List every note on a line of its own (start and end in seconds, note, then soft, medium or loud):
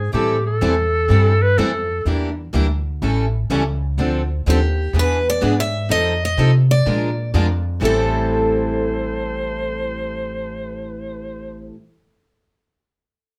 0.00 0.12 G#2 medium
0.00 0.11 G#4 medium
0.12 0.60 A2 medium
0.12 0.35 E3 medium
0.12 0.35 G3 medium
0.12 0.35 C4 medium
0.12 0.36 E4 medium
0.12 0.43 G4 medium
0.12 0.36 A4 medium
0.47 1.44 A4 medium
0.61 1.09 E2 medium
0.61 0.73 E3 medium
0.61 0.74 G3 medium
0.61 0.74 C4 medium
0.61 0.74 E4 loud
0.61 0.74 A4 medium
1.10 1.56 G2 medium
1.10 1.32 E3 medium
1.10 1.33 G3 medium
1.10 1.33 C4 medium
1.10 1.33 E4 medium
1.10 1.33 A4 medium
1.43 1.60 B4 loud
1.58 2.05 F2 medium
1.58 1.70 E3 medium
1.58 1.70 G3 medium
1.58 1.70 C4 medium
1.58 1.70 E4 medium
1.58 2.06 A4 medium
1.58 1.70 A4 loud
2.05 2.52 E2 medium
2.05 2.28 E3 medium
2.05 2.28 G3 medium
2.05 2.28 A#3 medium
2.05 2.28 D4 medium
2.05 2.29 E4 medium
2.05 2.29 G4 medium
2.05 2.29 A#4 medium
2.53 3.01 D2 medium
2.53 2.65 E3 medium
2.53 2.66 G3 medium
2.53 2.65 A#3 medium
2.53 2.66 D4 medium
2.53 2.66 E4 medium
2.53 2.66 G4 medium
2.53 2.66 A#4 medium
3.02 3.48 A1 medium
3.02 3.24 E3 medium
3.02 3.24 G3 medium
3.02 3.24 C#4 medium
3.02 3.25 E4 medium
3.02 3.25 A4 medium
3.50 3.96 C#2 medium
3.50 3.62 E3 medium
3.50 3.62 G3 medium
3.50 3.62 C#4 medium
3.50 3.63 E4 medium
3.50 3.63 A4 medium
3.98 4.44 D2 medium
3.98 4.20 D3 medium
3.98 4.20 F3 medium
3.98 4.20 C4 medium
3.98 4.20 D4 medium
3.98 4.21 A4 medium
4.46 4.93 D#2 medium
4.46 4.58 D3 medium
4.46 4.58 F3 medium
4.46 4.58 C4 medium
4.46 4.58 D4 medium
4.46 4.97 G4 medium
4.46 4.59 A4 medium
4.93 5.40 E2 medium
4.93 5.16 E3 medium
4.93 5.16 B3 medium
4.93 5.17 D4 medium
4.93 5.17 G#4 medium
4.93 5.17 B4 medium
4.99 5.29 B4 medium
5.30 5.60 D5 medium
5.41 5.89 G#2 medium
5.41 5.53 E3 medium
5.41 5.53 B3 medium
5.41 5.54 D4 medium
5.41 5.54 G#4 medium
5.41 5.54 B4 medium
5.60 5.89 E5 loud
5.89 6.37 F2 medium
5.89 6.12 F3 medium
5.89 6.12 C4 medium
5.89 6.12 D#4 medium
5.89 6.13 A4 medium
5.89 6.24 D#5 loud
6.25 6.53 D#5 medium
6.38 6.84 C3 medium
6.38 6.50 F3 medium
6.38 6.50 C4 medium
6.38 6.50 D#4 medium
6.38 6.50 A4 medium
6.71 7.31 D5 medium
6.86 7.33 A#2 medium
6.86 7.08 F3 medium
6.86 7.08 G#3 medium
6.86 7.08 D4 medium
6.86 7.08 F4 medium
6.86 7.09 A#4 medium
7.34 7.80 F2 medium
7.34 7.46 F3 medium
7.34 7.46 G#3 medium
7.34 7.46 D4 medium
7.34 7.46 F4 medium
7.34 7.46 A#4 medium
7.81 11.69 A1 medium
7.81 11.74 A2 medium
7.81 11.75 E3 medium
7.81 11.75 G3 medium
7.81 11.76 C4 medium
7.81 11.77 E4 medium
7.81 11.72 C5 medium
7.85 11.74 A4 medium
7.85 11.78 A4 medium